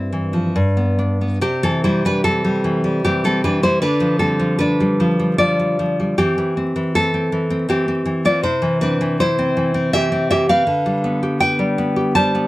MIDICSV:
0, 0, Header, 1, 2, 480
1, 0, Start_track
1, 0, Key_signature, 0, "major"
1, 0, Tempo, 858369
1, 787, Time_signature, 3, 2, 24, 8
1, 787, Tempo, 816327
1, 1267, Tempo, 789474
1, 3667, Tempo, 748130
1, 7712, End_track
2, 0, Start_track
2, 0, Title_t, "Nylon-string guitar"
2, 0, Program_c, 0, 24
2, 0, Note_on_c, 0, 43, 71
2, 0, Note_on_c, 0, 60, 51
2, 0, Note_on_c, 0, 64, 58
2, 0, Note_on_c, 0, 67, 80
2, 70, Note_on_c, 0, 52, 50
2, 185, Note_on_c, 0, 53, 47
2, 282, Note_off_c, 0, 43, 0
2, 303, Note_off_c, 0, 60, 0
2, 304, Note_off_c, 0, 53, 0
2, 305, Note_off_c, 0, 52, 0
2, 305, Note_off_c, 0, 64, 0
2, 311, Note_on_c, 0, 43, 74
2, 430, Note_on_c, 0, 59, 47
2, 525, Note_off_c, 0, 67, 0
2, 552, Note_on_c, 0, 62, 52
2, 671, Note_off_c, 0, 59, 0
2, 678, Note_on_c, 0, 59, 45
2, 777, Note_off_c, 0, 43, 0
2, 790, Note_off_c, 0, 62, 0
2, 791, Note_off_c, 0, 59, 0
2, 791, Note_on_c, 0, 48, 70
2, 793, Note_on_c, 0, 67, 106
2, 797, Note_on_c, 0, 60, 81
2, 906, Note_off_c, 0, 60, 0
2, 912, Note_off_c, 0, 67, 0
2, 918, Note_on_c, 0, 52, 57
2, 919, Note_on_c, 0, 69, 100
2, 926, Note_on_c, 0, 60, 74
2, 1031, Note_off_c, 0, 60, 0
2, 1035, Note_off_c, 0, 69, 0
2, 1041, Note_on_c, 0, 55, 60
2, 1042, Note_on_c, 0, 72, 87
2, 1047, Note_on_c, 0, 64, 71
2, 1150, Note_off_c, 0, 64, 0
2, 1154, Note_off_c, 0, 72, 0
2, 1158, Note_off_c, 0, 52, 0
2, 1165, Note_on_c, 0, 52, 52
2, 1170, Note_on_c, 0, 71, 99
2, 1176, Note_on_c, 0, 62, 72
2, 1273, Note_off_c, 0, 62, 0
2, 1275, Note_off_c, 0, 71, 0
2, 1277, Note_on_c, 0, 69, 106
2, 1284, Note_on_c, 0, 60, 79
2, 1394, Note_off_c, 0, 55, 0
2, 1402, Note_on_c, 0, 55, 58
2, 1514, Note_off_c, 0, 52, 0
2, 1522, Note_on_c, 0, 52, 55
2, 1634, Note_off_c, 0, 55, 0
2, 1641, Note_on_c, 0, 55, 57
2, 1740, Note_off_c, 0, 60, 0
2, 1742, Note_off_c, 0, 69, 0
2, 1760, Note_off_c, 0, 52, 0
2, 1766, Note_on_c, 0, 52, 67
2, 1766, Note_on_c, 0, 67, 100
2, 1772, Note_on_c, 0, 60, 78
2, 1878, Note_off_c, 0, 55, 0
2, 1878, Note_off_c, 0, 60, 0
2, 1883, Note_off_c, 0, 67, 0
2, 1885, Note_on_c, 0, 55, 57
2, 1889, Note_on_c, 0, 69, 90
2, 1900, Note_on_c, 0, 60, 72
2, 2000, Note_off_c, 0, 52, 0
2, 2001, Note_off_c, 0, 60, 0
2, 2004, Note_off_c, 0, 69, 0
2, 2006, Note_on_c, 0, 52, 62
2, 2006, Note_on_c, 0, 71, 88
2, 2013, Note_on_c, 0, 62, 65
2, 2113, Note_off_c, 0, 55, 0
2, 2116, Note_off_c, 0, 62, 0
2, 2119, Note_off_c, 0, 71, 0
2, 2120, Note_on_c, 0, 55, 58
2, 2124, Note_on_c, 0, 72, 93
2, 2132, Note_on_c, 0, 64, 77
2, 2210, Note_off_c, 0, 48, 0
2, 2233, Note_off_c, 0, 64, 0
2, 2233, Note_off_c, 0, 72, 0
2, 2234, Note_off_c, 0, 55, 0
2, 2236, Note_on_c, 0, 71, 97
2, 2237, Note_off_c, 0, 52, 0
2, 2239, Note_on_c, 0, 50, 76
2, 2244, Note_on_c, 0, 62, 78
2, 2348, Note_on_c, 0, 53, 61
2, 2458, Note_off_c, 0, 62, 0
2, 2461, Note_off_c, 0, 71, 0
2, 2464, Note_on_c, 0, 69, 79
2, 2466, Note_on_c, 0, 55, 52
2, 2470, Note_on_c, 0, 60, 70
2, 2580, Note_off_c, 0, 53, 0
2, 2587, Note_on_c, 0, 53, 58
2, 2695, Note_off_c, 0, 60, 0
2, 2700, Note_off_c, 0, 69, 0
2, 2703, Note_on_c, 0, 71, 100
2, 2714, Note_on_c, 0, 62, 82
2, 2828, Note_off_c, 0, 55, 0
2, 2835, Note_on_c, 0, 55, 61
2, 2946, Note_off_c, 0, 53, 0
2, 2954, Note_on_c, 0, 53, 63
2, 3066, Note_off_c, 0, 55, 0
2, 3073, Note_on_c, 0, 55, 58
2, 3168, Note_off_c, 0, 71, 0
2, 3169, Note_off_c, 0, 62, 0
2, 3186, Note_off_c, 0, 53, 0
2, 3188, Note_on_c, 0, 74, 114
2, 3193, Note_on_c, 0, 53, 62
2, 3198, Note_on_c, 0, 65, 79
2, 3309, Note_off_c, 0, 55, 0
2, 3317, Note_on_c, 0, 55, 54
2, 3428, Note_off_c, 0, 53, 0
2, 3436, Note_on_c, 0, 53, 53
2, 3554, Note_off_c, 0, 55, 0
2, 3561, Note_on_c, 0, 55, 51
2, 3646, Note_off_c, 0, 65, 0
2, 3647, Note_off_c, 0, 50, 0
2, 3647, Note_off_c, 0, 74, 0
2, 3671, Note_off_c, 0, 53, 0
2, 3672, Note_on_c, 0, 67, 95
2, 3673, Note_on_c, 0, 52, 73
2, 3674, Note_off_c, 0, 55, 0
2, 3680, Note_on_c, 0, 60, 75
2, 3792, Note_off_c, 0, 52, 0
2, 3800, Note_on_c, 0, 52, 60
2, 3915, Note_off_c, 0, 60, 0
2, 3923, Note_on_c, 0, 60, 55
2, 4035, Note_off_c, 0, 52, 0
2, 4043, Note_on_c, 0, 52, 61
2, 4142, Note_off_c, 0, 67, 0
2, 4168, Note_off_c, 0, 60, 0
2, 4168, Note_on_c, 0, 69, 111
2, 4176, Note_on_c, 0, 60, 74
2, 4281, Note_off_c, 0, 60, 0
2, 4288, Note_on_c, 0, 60, 61
2, 4398, Note_off_c, 0, 52, 0
2, 4406, Note_on_c, 0, 52, 64
2, 4515, Note_off_c, 0, 60, 0
2, 4522, Note_on_c, 0, 60, 61
2, 4622, Note_off_c, 0, 69, 0
2, 4634, Note_off_c, 0, 52, 0
2, 4639, Note_on_c, 0, 52, 70
2, 4643, Note_off_c, 0, 60, 0
2, 4646, Note_on_c, 0, 67, 98
2, 4650, Note_on_c, 0, 60, 77
2, 4756, Note_off_c, 0, 60, 0
2, 4764, Note_on_c, 0, 60, 63
2, 4868, Note_off_c, 0, 52, 0
2, 4876, Note_on_c, 0, 52, 56
2, 4988, Note_off_c, 0, 67, 0
2, 4993, Note_off_c, 0, 60, 0
2, 5000, Note_on_c, 0, 60, 60
2, 5004, Note_on_c, 0, 74, 104
2, 5014, Note_on_c, 0, 65, 78
2, 5117, Note_off_c, 0, 74, 0
2, 5118, Note_on_c, 0, 48, 73
2, 5119, Note_on_c, 0, 72, 97
2, 5120, Note_off_c, 0, 52, 0
2, 5120, Note_off_c, 0, 65, 0
2, 5121, Note_off_c, 0, 60, 0
2, 5128, Note_on_c, 0, 64, 66
2, 5237, Note_on_c, 0, 52, 68
2, 5350, Note_off_c, 0, 64, 0
2, 5352, Note_off_c, 0, 72, 0
2, 5361, Note_on_c, 0, 71, 89
2, 5363, Note_on_c, 0, 60, 64
2, 5371, Note_on_c, 0, 62, 75
2, 5479, Note_off_c, 0, 52, 0
2, 5487, Note_on_c, 0, 52, 69
2, 5591, Note_off_c, 0, 62, 0
2, 5593, Note_off_c, 0, 71, 0
2, 5611, Note_on_c, 0, 72, 110
2, 5621, Note_on_c, 0, 64, 88
2, 5722, Note_off_c, 0, 60, 0
2, 5730, Note_on_c, 0, 60, 66
2, 5839, Note_off_c, 0, 52, 0
2, 5846, Note_on_c, 0, 52, 58
2, 5951, Note_off_c, 0, 60, 0
2, 5958, Note_on_c, 0, 60, 64
2, 6067, Note_off_c, 0, 64, 0
2, 6069, Note_off_c, 0, 72, 0
2, 6077, Note_off_c, 0, 52, 0
2, 6081, Note_on_c, 0, 76, 116
2, 6085, Note_on_c, 0, 52, 68
2, 6089, Note_on_c, 0, 67, 89
2, 6192, Note_off_c, 0, 60, 0
2, 6200, Note_on_c, 0, 60, 59
2, 6309, Note_off_c, 0, 67, 0
2, 6312, Note_off_c, 0, 52, 0
2, 6312, Note_off_c, 0, 76, 0
2, 6319, Note_on_c, 0, 52, 66
2, 6319, Note_on_c, 0, 76, 102
2, 6325, Note_on_c, 0, 67, 90
2, 6433, Note_off_c, 0, 60, 0
2, 6434, Note_off_c, 0, 67, 0
2, 6437, Note_off_c, 0, 76, 0
2, 6440, Note_on_c, 0, 60, 67
2, 6440, Note_on_c, 0, 77, 114
2, 6443, Note_on_c, 0, 71, 95
2, 6532, Note_off_c, 0, 48, 0
2, 6549, Note_off_c, 0, 60, 0
2, 6551, Note_on_c, 0, 50, 80
2, 6557, Note_off_c, 0, 52, 0
2, 6674, Note_on_c, 0, 55, 69
2, 6791, Note_on_c, 0, 59, 62
2, 6908, Note_off_c, 0, 55, 0
2, 6911, Note_on_c, 0, 67, 67
2, 7011, Note_off_c, 0, 71, 0
2, 7011, Note_off_c, 0, 77, 0
2, 7025, Note_on_c, 0, 79, 127
2, 7034, Note_on_c, 0, 71, 95
2, 7144, Note_on_c, 0, 55, 60
2, 7259, Note_off_c, 0, 59, 0
2, 7267, Note_on_c, 0, 59, 66
2, 7375, Note_off_c, 0, 67, 0
2, 7383, Note_on_c, 0, 67, 62
2, 7484, Note_off_c, 0, 71, 0
2, 7486, Note_off_c, 0, 79, 0
2, 7496, Note_off_c, 0, 55, 0
2, 7504, Note_on_c, 0, 55, 71
2, 7504, Note_on_c, 0, 81, 127
2, 7513, Note_on_c, 0, 72, 98
2, 7622, Note_off_c, 0, 59, 0
2, 7630, Note_on_c, 0, 59, 66
2, 7712, Note_off_c, 0, 50, 0
2, 7712, Note_off_c, 0, 55, 0
2, 7712, Note_off_c, 0, 59, 0
2, 7712, Note_off_c, 0, 67, 0
2, 7712, Note_off_c, 0, 72, 0
2, 7712, Note_off_c, 0, 81, 0
2, 7712, End_track
0, 0, End_of_file